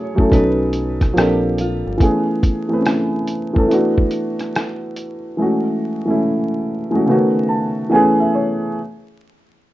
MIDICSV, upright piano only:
0, 0, Header, 1, 2, 480
1, 0, Start_track
1, 0, Key_signature, 3, "major"
1, 0, Tempo, 845070
1, 1141, Time_signature, 4, 2, 24, 8
1, 5529, End_track
2, 0, Start_track
2, 0, Title_t, "Upright piano"
2, 0, Program_c, 0, 0
2, 0, Control_c, 0, 64, 127
2, 0, Note_on_c, 0, 54, 73
2, 0, Note_on_c, 0, 57, 64
2, 0, Note_on_c, 0, 61, 61
2, 0, Note_on_c, 0, 64, 66
2, 0, Note_on_c, 0, 68, 81
2, 0, Note_on_c, 0, 80, 82
2, 83, Note_off_c, 0, 54, 0
2, 83, Note_on_c, 0, 54, 77
2, 91, Note_off_c, 0, 57, 0
2, 91, Note_on_c, 0, 57, 70
2, 97, Note_off_c, 0, 61, 0
2, 97, Note_on_c, 0, 61, 71
2, 104, Note_off_c, 0, 64, 0
2, 104, Note_on_c, 0, 64, 66
2, 111, Note_on_c, 0, 69, 85
2, 156, Note_off_c, 0, 54, 0
2, 165, Note_on_c, 0, 54, 72
2, 170, Note_off_c, 0, 61, 0
2, 171, Note_on_c, 0, 59, 68
2, 177, Note_off_c, 0, 57, 0
2, 178, Note_on_c, 0, 61, 72
2, 183, Note_off_c, 0, 64, 0
2, 184, Note_off_c, 0, 69, 0
2, 186, Control_c, 0, 64, 0
2, 186, Note_on_c, 0, 63, 73
2, 187, Note_off_c, 0, 80, 0
2, 192, Note_off_c, 0, 68, 0
2, 192, Note_on_c, 0, 69, 86
2, 273, Control_c, 0, 64, 127
2, 610, Note_off_c, 0, 54, 0
2, 613, Note_off_c, 0, 59, 0
2, 617, Note_off_c, 0, 61, 0
2, 621, Note_off_c, 0, 63, 0
2, 624, Note_off_c, 0, 69, 0
2, 645, Note_on_c, 0, 53, 78
2, 652, Note_on_c, 0, 58, 73
2, 659, Note_on_c, 0, 60, 72
2, 666, Control_c, 0, 64, 0
2, 666, Note_on_c, 0, 62, 73
2, 672, Note_on_c, 0, 69, 85
2, 756, Control_c, 0, 64, 127
2, 1090, Note_off_c, 0, 53, 0
2, 1094, Note_off_c, 0, 58, 0
2, 1097, Note_off_c, 0, 60, 0
2, 1101, Note_off_c, 0, 62, 0
2, 1104, Note_off_c, 0, 69, 0
2, 1122, Note_on_c, 0, 52, 80
2, 1131, Note_on_c, 0, 57, 66
2, 1137, Note_on_c, 0, 59, 66
2, 1143, Note_on_c, 0, 61, 68
2, 1148, Control_c, 0, 64, 0
2, 1150, Note_on_c, 0, 68, 81
2, 1250, Control_c, 0, 64, 127
2, 1468, Note_off_c, 0, 52, 0
2, 1472, Note_off_c, 0, 57, 0
2, 1475, Note_off_c, 0, 59, 0
2, 1478, Note_off_c, 0, 61, 0
2, 1482, Note_off_c, 0, 68, 0
2, 1525, Note_on_c, 0, 52, 73
2, 1532, Note_on_c, 0, 57, 69
2, 1539, Note_on_c, 0, 59, 60
2, 1546, Note_on_c, 0, 60, 51
2, 1553, Note_on_c, 0, 71, 75
2, 1568, Note_off_c, 0, 60, 0
2, 1582, Note_on_c, 0, 61, 57
2, 1931, Note_off_c, 0, 52, 0
2, 1934, Note_off_c, 0, 57, 0
2, 1937, Note_off_c, 0, 59, 0
2, 1944, Note_off_c, 0, 71, 0
2, 1959, Note_off_c, 0, 61, 0
2, 2007, Note_on_c, 0, 52, 77
2, 2014, Note_on_c, 0, 57, 68
2, 2020, Note_on_c, 0, 59, 67
2, 2027, Note_on_c, 0, 61, 70
2, 2034, Note_on_c, 0, 69, 88
2, 2082, Note_off_c, 0, 52, 0
2, 2088, Note_off_c, 0, 57, 0
2, 2091, Note_on_c, 0, 52, 77
2, 2095, Note_off_c, 0, 59, 0
2, 2097, Note_on_c, 0, 57, 72
2, 2104, Note_on_c, 0, 59, 70
2, 2105, Note_off_c, 0, 61, 0
2, 2108, Control_c, 0, 64, 0
2, 2109, Note_off_c, 0, 69, 0
2, 2110, Note_on_c, 0, 62, 65
2, 2118, Note_on_c, 0, 66, 85
2, 2192, Control_c, 0, 64, 127
2, 2969, Note_off_c, 0, 52, 0
2, 2972, Note_off_c, 0, 57, 0
2, 2975, Note_off_c, 0, 59, 0
2, 2978, Note_off_c, 0, 62, 0
2, 2982, Note_off_c, 0, 66, 0
2, 3051, Note_on_c, 0, 52, 66
2, 3058, Note_on_c, 0, 56, 64
2, 3065, Note_on_c, 0, 57, 64
2, 3069, Control_c, 0, 64, 0
2, 3072, Note_on_c, 0, 61, 58
2, 3079, Note_on_c, 0, 66, 78
2, 3180, Control_c, 0, 64, 127
2, 3392, Note_off_c, 0, 52, 0
2, 3396, Note_off_c, 0, 56, 0
2, 3399, Note_off_c, 0, 57, 0
2, 3403, Note_off_c, 0, 61, 0
2, 3406, Note_off_c, 0, 66, 0
2, 3439, Note_on_c, 0, 52, 67
2, 3446, Note_on_c, 0, 56, 61
2, 3453, Note_on_c, 0, 57, 68
2, 3460, Note_on_c, 0, 61, 65
2, 3466, Note_on_c, 0, 64, 82
2, 3847, Note_off_c, 0, 52, 0
2, 3851, Note_off_c, 0, 56, 0
2, 3854, Note_off_c, 0, 57, 0
2, 3858, Note_off_c, 0, 61, 0
2, 3861, Note_off_c, 0, 64, 0
2, 3923, Note_on_c, 0, 52, 68
2, 3929, Note_on_c, 0, 56, 66
2, 3936, Note_on_c, 0, 57, 67
2, 3943, Note_on_c, 0, 61, 68
2, 3951, Note_on_c, 0, 66, 76
2, 4010, Note_off_c, 0, 57, 0
2, 4011, Note_on_c, 0, 49, 69
2, 4013, Note_off_c, 0, 52, 0
2, 4016, Note_off_c, 0, 56, 0
2, 4018, Note_on_c, 0, 57, 72
2, 4023, Note_off_c, 0, 61, 0
2, 4025, Note_on_c, 0, 59, 73
2, 4027, Note_off_c, 0, 66, 0
2, 4028, Control_c, 0, 64, 0
2, 4032, Note_on_c, 0, 61, 70
2, 4039, Note_on_c, 0, 66, 87
2, 4048, Note_on_c, 0, 51, 79
2, 4064, Note_off_c, 0, 49, 0
2, 4127, Control_c, 0, 64, 127
2, 4253, Note_on_c, 0, 81, 63
2, 4457, Note_off_c, 0, 57, 0
2, 4460, Note_off_c, 0, 59, 0
2, 4464, Note_off_c, 0, 61, 0
2, 4467, Note_off_c, 0, 66, 0
2, 4472, Note_off_c, 0, 51, 0
2, 4479, Note_off_c, 0, 81, 0
2, 4484, Note_on_c, 0, 52, 82
2, 4491, Note_on_c, 0, 57, 81
2, 4497, Note_on_c, 0, 80, 75
2, 4498, Note_on_c, 0, 59, 80
2, 4505, Note_on_c, 0, 61, 79
2, 4507, Control_c, 0, 64, 0
2, 4512, Note_on_c, 0, 68, 97
2, 4612, Control_c, 0, 64, 127
2, 4645, Note_off_c, 0, 80, 0
2, 4656, Note_on_c, 0, 76, 66
2, 4734, Note_off_c, 0, 76, 0
2, 4742, Note_on_c, 0, 73, 73
2, 4930, Note_off_c, 0, 52, 0
2, 4933, Note_off_c, 0, 57, 0
2, 4937, Note_off_c, 0, 59, 0
2, 4940, Note_off_c, 0, 61, 0
2, 4944, Note_off_c, 0, 68, 0
2, 4964, Note_off_c, 0, 73, 0
2, 4988, Control_c, 0, 64, 0
2, 5529, End_track
0, 0, End_of_file